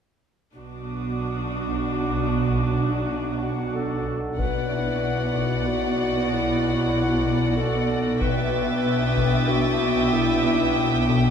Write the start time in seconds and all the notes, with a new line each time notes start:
0.55 B1 B2 D4 F#4 F#5 D6 D#6
1.51 D6
3.74 A4
4.38 B1 B2 B3 F#4 B4 D5 F#5, taiko
4.70 B2 E4 E5
5.03 B2
5.35 B2
5.67 B2 F#4
5.99 B3
6.30 B2 E4
6.62 B2
6.95 B2
7.26 B2
7.57 B2 A4 C#6
7.90 B3
8.21 B1 B2 B3 D4 E4 B4 E5 G5 D6 A6, taiko
8.54 B2
8.86 B2 D#6
9.17 B2, taiko
9.48 B2 F#4
9.81 B3 D6
10.13 B2 E4
10.45 B2
10.77 B2
11.09 B2